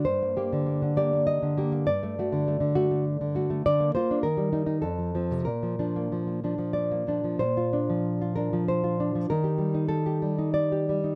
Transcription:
\new Staff \with { instrumentName = "Nylon-string guitar" } { \time 3/4 \key d \phrygian \tempo 4 = 97 << { c''4. d''8 ees''4 | d''4. fis'8 r4 | \key bes \major d''8 c''8 bes'4 a'4 | bes'2 d''4 |
c''4. bes'8 c''4 | bes'4 a'4 d''4 | } \\ { g,16 bes16 <bes g'>16 d16 bes16 d16 <bes g'>16 bes8 d16 <bes g'>16 bes16 | g,16 a16 <a fis'>16 d16 a16 d16 a16 a8 d16 <a fis'>16 a16 | d16 bes16 <bes f'>16 d'16 ees16 g16 <g ees'>16 ees'16 f,16 f16 <f c'>16 c16 | bes,16 f16 <f d'>16 bes16 f16 bes16 <f d'>16 f8 bes16 <f d'>16 f16 |
bes,16 f'16 d'16 f8 f'16 d'16 f8 f'16 d'16 f16 | ees16 g'16 g16 ees'8 g'16 g16 ees'8 g'16 g16 ees'16 | } >> }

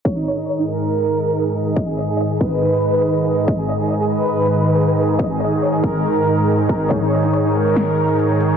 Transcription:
<<
  \new Staff \with { instrumentName = "Violin section" } { \time 4/4 \key gis \minor \tempo 4 = 140 << { cis''8 cis''8 cis''8 ais'2~ ais'8 | dis''8 dis''8 dis''8 b'2~ b'8 | dis''8 dis''8 dis''8 b'2~ b'8 | dis''8 dis''8 cis''8 ais'2~ ais'8 |
cis''8 cis''8 cis''8 ais'2~ ais'8 | } \\ { r16 dis'16 r16 dis'16 r16 dis'16 r2 r8 | r16 gis'16 r16 gis'16 r16 gis'16 r2 r8 | r16 gis'16 r16 gis'16 r16 gis'16 r2 r8 | r16 gis'16 r16 gis'16 r16 gis'16 r2 r8 |
r16 dis'16 r16 dis'16 r16 dis'16 r2 r8 | } >> }
  \new Staff \with { instrumentName = "Supersaw synth" } { \time 4/4 \key gis \minor << { dis''1~ | dis''1~ | dis''1~ | dis''1 |
cis''1 | } \\ { <gis, dis dis' gis'>1~ | <gis, dis dis' gis'>1~ | <gis, dis dis' gis'>1~ | <gis, dis dis' gis'>1~ |
<gis, dis dis' gis'>1 | } >> }
  \new DrumStaff \with { instrumentName = "Drums" } \drummode { \time 4/4 bd4 r4 r4 r4 | bd4 r8 bd8 r4 r4 | bd4 r4 r4 r4 | bd4 r8 bd8 r4 r8 bd8 |
<hh bd>8. hh16 hh4 <hh sn>8 hh16 hh16 hh8 hh8 | }
>>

